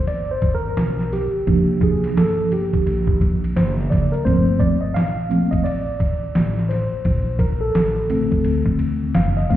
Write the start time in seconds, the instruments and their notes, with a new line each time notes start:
0.07 upright bass G1, tine electric piano D5, ride, high conga, maracas
0.29 tine electric piano C5, maracas
0.42 kick, ride, maracas
0.55 tine electric piano A#4
0.65 high conga, maracas
0.77 upright bass B1, snare, hi-hat pedal, ride, maracas
0.99 snare, maracas
1.13 tine electric piano G4, snare, ride, low conga, maracas
1.34 muted upright bass stroke, maracas
1.47 upright bass C2, tine electric piano F3 A#3 D4, kick, ride, maracas
1.69 maracas
1.81 tine electric piano G#4, kick, ride, maracas
2.04 snare, ride, maracas
2.17 upright bass G1, tine electric piano A4, snare, hi-hat pedal, ride, high conga, maracas
2.39 maracas
2.52 tine electric piano G4, ride, low conga, maracas
2.73 kick, ride, high conga, maracas
2.86 upright bass A#1, ride, high conga, maracas
3.07 kick, maracas
3.21 kick, ride, maracas
3.44 ride, high conga, maracas
3.56 upright bass F#1, tine electric piano C5, snare, hi-hat pedal, ride, maracas
3.78 snare, maracas
3.90 tine electric piano D5, kick, snare, ride, high conga, low conga, maracas
4.12 tine electric piano A#4, muted upright bass stroke, ride, maracas
4.24 upright bass G1, tine electric piano F3 A3 A#3 C4 C5, kick, ride, maracas
4.48 maracas
4.60 tine electric piano D5, kick, ride, maracas
4.81 tine electric piano D#5, maracas
4.94 upright bass A#1, tine electric piano F5, snare, hi-hat pedal, ride, high conga, maracas
5.18 maracas
5.29 tine electric piano F3 A3 A#3 C4, ride, low conga, maracas
5.51 tine electric piano D#5, muted upright bass stroke, kick, ride, maracas
5.64 upright bass A1, tine electric piano D5, ride, high conga, maracas
5.87 maracas
6.00 kick, ride, maracas
6.23 high conga, maracas
6.35 upright bass A1, snare, hi-hat pedal, ride, maracas
6.56 snare, maracas
6.69 tine electric piano C5, snare, ride, low conga, maracas
6.92 muted upright bass stroke, maracas
7.05 upright bass A#1, kick, ride, maracas
7.26 maracas
7.39 tine electric piano A#4, kick, ride, maracas
7.61 tine electric piano A4, maracas
7.75 upright bass A1, snare, hi-hat pedal, ride, high conga, maracas
7.97 maracas
8.09 tine electric piano D3 A3 C4, ride, low conga, maracas
8.32 kick, ride, maracas
8.44 upright bass D2, ride, high conga, maracas
8.65 kick, maracas
8.79 ride, maracas
9.03 high conga, maracas
9.14 upright bass F#1, tine electric piano F5, snare, hi-hat pedal, ride, maracas
9.36 tine electric piano D#5, snare, maracas
9.50 upright bass G1, tine electric piano F3 A3 A#3 C4 F5, kick, snare, ride, low conga, maracas